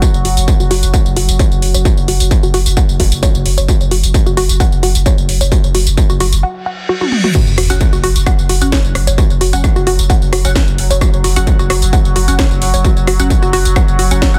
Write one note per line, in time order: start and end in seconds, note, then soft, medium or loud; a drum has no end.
0.00 6.43 F#3 medium
0.00 6.43 F#4 medium
0.00 0.07 F#4 medium
0.00 kick loud
0.00 closed hi-hat medium
0.00 tambourine medium
0.14 0.24 F#1 medium
0.14 tambourine soft
0.25 0.36 F#1 loud
0.25 0.30 F#4 medium
0.25 open hi-hat loud
0.37 0.48 F#1 medium
0.37 closed hi-hat medium
0.37 tambourine medium
0.48 kick loud
0.48 closed hi-hat medium
0.48 tambourine medium
0.60 0.70 F#1 medium
0.60 0.66 F#4 medium
0.60 tambourine soft
0.71 0.82 F#1 medium
0.71 0.78 F#4 loud
0.71 open hi-hat medium
0.83 0.93 F#1 medium
0.83 closed hi-hat medium
0.83 tambourine medium
0.94 0.98 F#5 medium
0.94 kick loud
0.94 closed hi-hat medium
0.94 tambourine medium
1.06 1.16 F#1 medium
1.06 tambourine soft
1.16 1.28 F#1 loud
1.16 1.21 F#4 medium
1.16 open hi-hat loud
1.29 1.39 F#1 medium
1.29 closed hi-hat medium
1.29 tambourine medium
1.39 1.44 C#5 medium
1.39 kick loud
1.39 closed hi-hat medium
1.39 tambourine medium
1.52 1.62 F#1 medium
1.52 tambourine soft
1.62 1.74 F#1 loud
1.62 open hi-hat medium
1.74 1.85 F#1 medium
1.74 1.77 C#5 medium
1.74 closed hi-hat medium
1.74 tambourine medium
1.85 1.90 F#4 medium
1.85 kick loud
1.85 closed hi-hat medium
1.85 tambourine medium
1.97 2.08 F#1 medium
1.97 tambourine soft
2.08 2.20 F#1 loud
2.08 2.13 F#4 medium
2.08 open hi-hat loud
2.20 2.31 F#1 medium
2.20 closed hi-hat medium
2.20 tambourine medium
2.31 kick loud
2.31 closed hi-hat medium
2.31 tambourine medium
2.43 2.53 F#1 medium
2.43 2.49 F#4 medium
2.43 tambourine soft
2.54 2.65 F#1 loud
2.54 2.61 F#4 loud
2.54 open hi-hat medium
2.66 2.77 F#1 medium
2.66 closed hi-hat medium
2.66 tambourine medium
2.77 2.81 F#5 medium
2.77 kick loud
2.77 closed hi-hat medium
2.77 tambourine medium
2.89 2.99 F#1 medium
2.89 tambourine soft
3.00 3.11 F#1 loud
3.00 3.04 F#4 medium
3.00 kick medium
3.00 open hi-hat loud
3.12 3.22 F#1 medium
3.12 closed hi-hat medium
3.12 tambourine medium
3.23 3.27 C#5 medium
3.23 kick loud
3.23 closed hi-hat medium
3.23 tambourine medium
3.35 3.45 F#1 medium
3.35 tambourine soft
3.46 3.57 F#1 loud
3.46 open hi-hat medium
3.58 3.68 F#1 medium
3.58 3.60 C#5 medium
3.58 closed hi-hat medium
3.58 tambourine medium
3.68 3.73 F#4 medium
3.68 kick loud
3.68 closed hi-hat medium
3.68 tambourine medium
3.81 3.91 F#1 medium
3.81 tambourine soft
3.91 4.03 F#1 loud
3.91 3.96 F#4 medium
3.91 open hi-hat loud
4.04 4.14 F#1 medium
4.04 closed hi-hat medium
4.04 tambourine medium
4.14 kick loud
4.14 closed hi-hat medium
4.14 tambourine medium
4.26 4.37 F#1 medium
4.26 4.32 F#4 medium
4.26 tambourine soft
4.37 4.49 F#1 loud
4.37 4.44 F#4 loud
4.37 open hi-hat medium
4.49 4.60 F#1 medium
4.49 closed hi-hat medium
4.49 tambourine medium
4.60 4.65 F#5 medium
4.60 kick loud
4.60 closed hi-hat medium
4.60 tambourine medium
4.72 4.82 F#1 medium
4.72 tambourine soft
4.83 4.95 F#1 loud
4.83 4.87 F#4 medium
4.83 open hi-hat loud
4.95 5.06 F#1 medium
4.95 closed hi-hat medium
4.95 tambourine medium
5.06 5.10 C#5 medium
5.06 kick loud
5.06 closed hi-hat medium
5.06 tambourine medium
5.18 5.28 F#1 medium
5.18 tambourine soft
5.29 5.40 F#1 loud
5.29 open hi-hat medium
5.41 5.51 F#1 medium
5.41 5.43 C#5 medium
5.41 closed hi-hat medium
5.41 tambourine medium
5.52 5.56 F#4 medium
5.52 kick loud
5.52 closed hi-hat medium
5.52 tambourine medium
5.64 5.74 F#1 medium
5.64 tambourine soft
5.75 5.86 F#1 loud
5.75 5.79 F#4 medium
5.75 open hi-hat loud
5.87 5.97 F#1 medium
5.87 closed hi-hat medium
5.87 tambourine medium
5.97 kick loud
5.97 closed hi-hat medium
5.97 tambourine soft
6.10 6.20 F#1 medium
6.10 6.16 F#4 medium
6.10 tambourine soft
6.20 6.32 F#1 loud
6.20 6.27 F#4 loud
6.20 open hi-hat medium
6.32 6.43 F#1 medium
6.32 closed hi-hat medium
6.32 tambourine medium
6.43 6.48 F#5 medium
6.43 reverse cymbal medium
6.66 6.71 F#5 medium
6.89 6.94 F#4 medium
7.01 7.05 F#4 medium
7.01 high tom soft
7.12 mid tom medium
7.24 7.28 F#4 medium
7.24 mid tom medium
7.35 14.39 F#3 medium
7.35 7.39 F#4 medium
7.35 14.39 F#4 medium
7.35 kick loud
7.35 closed hi-hat medium
7.35 crash loud
7.35 tambourine medium
7.35 sub drop medium
7.47 7.57 F#1 medium
7.47 tambourine soft
7.58 7.69 F#1 loud
7.58 7.62 F#4 medium
7.58 cross-stick medium
7.58 open hi-hat loud
7.70 7.81 F#1 medium
7.70 7.81 C#4 medium
7.70 7.81 F#4 medium
7.70 7.81 F#5 medium
7.70 closed hi-hat medium
7.70 tambourine medium
7.81 kick loud
7.81 closed hi-hat medium
7.81 tambourine soft
7.93 8.03 F#1 medium
7.93 7.99 F#4 medium
7.93 tambourine soft
8.04 8.15 F#1 loud
8.04 8.10 F#4 loud
8.04 open hi-hat medium
8.16 8.26 F#1 medium
8.16 closed hi-hat medium
8.16 tambourine medium
8.27 8.31 F#5 medium
8.27 kick loud
8.27 cross-stick medium
8.27 closed hi-hat medium
8.27 tambourine soft
8.39 8.49 F#1 medium
8.39 tambourine soft
8.49 8.61 F#1 loud
8.49 8.54 F#4 medium
8.49 open hi-hat loud
8.62 8.72 F#1 medium
8.62 8.68 C#4 medium
8.62 8.68 F#4 medium
8.62 8.68 F#5 medium
8.62 closed hi-hat medium
8.62 tambourine medium
8.72 8.77 C#5 medium
8.72 kick loud
8.72 snare loud
8.72 closed hi-hat medium
8.72 tambourine medium
8.84 8.95 F#1 medium
8.84 tambourine soft
8.95 9.07 F#1 loud
8.95 cross-stick medium
8.95 open hi-hat medium
9.07 9.18 F#1 medium
9.07 9.10 C#5 medium
9.07 closed hi-hat medium
9.07 tambourine medium
9.18 9.23 F#4 medium
9.18 kick loud
9.18 closed hi-hat medium
9.18 tambourine medium
9.30 9.40 F#1 medium
9.30 tambourine soft
9.41 9.53 F#1 loud
9.41 9.46 F#4 medium
9.41 open hi-hat loud
9.53 9.64 F#1 medium
9.53 9.64 C#4 medium
9.53 9.64 F#4 medium
9.53 9.64 F#5 loud
9.53 closed hi-hat medium
9.53 tambourine medium
9.64 kick loud
9.64 cross-stick medium
9.64 closed hi-hat medium
9.64 tambourine medium
9.76 9.86 F#1 medium
9.76 9.82 F#4 medium
9.76 tambourine soft
9.87 9.98 F#1 loud
9.87 9.94 F#4 loud
9.87 open hi-hat medium
9.99 10.10 F#1 medium
9.99 closed hi-hat medium
9.99 tambourine medium
10.10 10.14 F#5 medium
10.10 kick loud
10.10 closed hi-hat medium
10.10 tambourine medium
10.22 10.32 F#1 medium
10.22 tambourine soft
10.33 10.44 F#1 loud
10.33 10.37 F#4 medium
10.33 cross-stick loud
10.33 open hi-hat loud
10.45 10.55 F#1 medium
10.45 10.51 C#4 medium
10.45 10.52 F#4 medium
10.45 10.51 F#5 medium
10.45 closed hi-hat medium
10.45 tambourine medium
10.56 10.60 C#5 medium
10.56 kick loud
10.56 snare loud
10.56 closed hi-hat medium
10.56 tambourine medium
10.68 10.78 F#1 medium
10.68 tambourine soft
10.78 10.90 F#1 loud
10.78 open hi-hat medium
10.91 11.01 F#1 medium
10.91 10.93 C#5 medium
10.91 closed hi-hat medium
10.91 tambourine medium
11.01 11.06 F#4 medium
11.01 kick loud
11.01 cross-stick loud
11.01 closed hi-hat medium
11.01 tambourine medium
11.13 11.24 F#1 medium
11.13 tambourine soft
11.24 11.36 F#1 loud
11.24 11.29 F#4 medium
11.24 open hi-hat loud
11.36 11.47 F#1 medium
11.36 11.47 C#4 medium
11.36 11.47 F#4 medium
11.36 11.47 F#5 loud
11.36 closed hi-hat medium
11.36 tambourine medium
11.47 kick loud
11.47 closed hi-hat medium
11.47 tambourine soft
11.59 11.69 F#1 medium
11.59 11.65 F#4 medium
11.59 tambourine soft
11.70 11.82 F#1 loud
11.70 11.77 F#4 loud
11.70 cross-stick medium
11.70 open hi-hat medium
11.82 11.93 F#1 medium
11.82 closed hi-hat medium
11.82 tambourine medium
11.93 11.97 F#5 medium
11.93 kick loud
11.93 closed hi-hat medium
11.93 tambourine medium
12.05 12.15 F#1 medium
12.05 tambourine soft
12.16 12.27 F#1 loud
12.16 12.20 F#4 medium
12.16 open hi-hat loud
12.28 12.39 F#1 medium
12.28 12.35 C#4 medium
12.28 12.35 F#4 medium
12.28 12.35 F#5 medium
12.28 closed hi-hat medium
12.28 tambourine medium
12.39 12.43 C#5 medium
12.39 kick loud
12.39 cross-stick loud
12.39 snare loud
12.39 closed hi-hat medium
12.39 tambourine medium
12.51 12.61 F#1 medium
12.51 tambourine soft
12.62 12.73 F#1 loud
12.62 open hi-hat loud
12.74 12.84 F#1 medium
12.74 12.76 C#5 medium
12.74 tambourine medium
12.85 12.89 F#4 medium
12.85 kick loud
12.85 closed hi-hat medium
12.85 tambourine medium
12.97 13.07 F#1 medium
12.97 tambourine soft
13.07 13.19 F#1 loud
13.07 13.12 F#4 medium
13.07 cross-stick loud
13.07 open hi-hat loud
13.20 13.30 F#1 medium
13.20 13.30 C#4 medium
13.20 13.30 F#4 medium
13.20 13.30 F#5 loud
13.20 closed hi-hat medium
13.20 tambourine medium
13.30 kick loud
13.30 closed hi-hat medium
13.30 tambourine medium
13.42 13.53 F#1 medium
13.42 13.48 F#4 medium
13.42 tambourine soft
13.53 13.65 F#1 loud
13.53 13.60 F#4 loud
13.53 open hi-hat medium
13.65 13.76 F#1 medium
13.65 closed hi-hat medium
13.65 tambourine medium
13.76 13.81 F#5 medium
13.76 kick loud
13.76 cross-stick loud
13.76 closed hi-hat medium
13.76 tambourine medium
13.88 13.98 F#1 medium
13.88 tambourine soft
13.99 14.11 F#1 loud
13.99 14.04 F#4 medium
13.99 open hi-hat loud
14.11 14.22 F#1 medium
14.11 14.18 C#4 medium
14.11 14.18 F#4 medium
14.11 14.18 F#5 medium
14.11 closed hi-hat medium
14.11 tambourine medium
14.22 14.26 C#5 medium
14.22 kick loud
14.22 snare loud
14.22 closed hi-hat medium
14.22 tambourine medium
14.34 14.39 F#1 medium
14.34 14.39 C#4 medium
14.34 14.39 F#4 medium
14.34 14.39 F#5 medium
14.34 tambourine soft